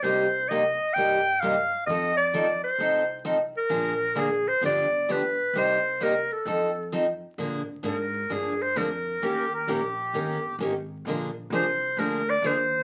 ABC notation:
X:1
M:4/4
L:1/8
Q:"Swing" 1/4=131
K:Bbmix
V:1 name="Clarinet"
c2 e2 g2 f2 | e d2 c3 z B- | B2 A c d2 =B2 | c2 B =A3 z2 |
z2 B2 A c B2- | B z6 z | z2 c2 B d c2 |]
V:2 name="Accordion"
z8 | z8 | z8 | z8 |
z8 | G B G4 z2 | z8 |]
V:3 name="Steel-string acoustic guitar"
[C,G,B,EG] z [C,G,B,EG] z [C,G,B,EG] z [C,G,B,EG] z | [F,CE=A] z [F,CEA] z [F,CEA] z [F,CEA] z | [D,F,B,DA] z [D,F,B,DA] z [D,F,=B,DG] z [D,F,B,DG] z | [C,G,B,EG] z [C,G,B,EG] z [F,CE=A] z [F,CEA] z |
[D,F,B,DA] z [D,F,B,DA] z [D,F,B,DA] z [D,F,B,DA] z | [E,B,_DGB] z [E,B,DGB] z [E,B,DGB] z [E,B,DGB] z | [D,F,B,DA] z [D,F,B,DA] z [D,F,B,DA] z [D,F,B,DA] z |]
V:4 name="Upright bass" clef=bass
C,,4 G,,4 | F,,4 C,,4 | B,,,4 G,,,4 | C,,4 F,,4 |
B,, z A,,2 G,,2 F,,2 | E,,2 B,,,2 G,,,2 A,,,2 | B,,,2 C,,2 D,,2 E,,2 |]